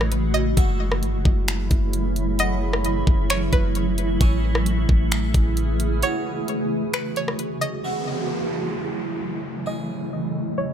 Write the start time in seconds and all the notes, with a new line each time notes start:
Already playing: A1 C#3 E3 G#3 A3 F#4 C#5
0.01 cross-stick
0.12 closed hi-hat
0.34 D#5, closed hi-hat
0.57 F#1 C#3 F#3 A3 E4 F#4 E5, kick, closed hi-hat
0.92 cross-stick
1.03 G#1, closed hi-hat
1.14 F#1
1.25 F#1, kick
1.48 finger snap, closed hi-hat
1.71 F#1, kick, closed hi-hat
1.93 closed hi-hat
2.16 closed hi-hat
2.39 D#5 F#5, closed hi-hat
2.73 cross-stick
2.85 closed hi-hat
3.07 F#1, kick
3.30 C#5, finger snap, closed hi-hat
3.53 F#1 B4, kick, closed hi-hat
3.75 closed hi-hat
3.98 closed hi-hat
4.21 A1 C#3 E3 A3 G#4 C#5, kick, closed hi-hat
4.55 cross-stick
4.66 closed hi-hat
4.89 A1, kick
5.12 finger snap, closed hi-hat
5.34 A1, kick, closed hi-hat
5.57 closed hi-hat
5.80 closed hi-hat
6.03 F#4 C#5, closed hi-hat
6.48 closed hi-hat
6.93 B4, finger snap, closed hi-hat
7.16 C#5, closed hi-hat
7.28 cross-stick
7.39 closed hi-hat
7.61 D#5, closed hi-hat
7.84 C#3 E3 F#3 A3 E4 F#4, downlifter
9.66 G#4 D#5
10.58 C#5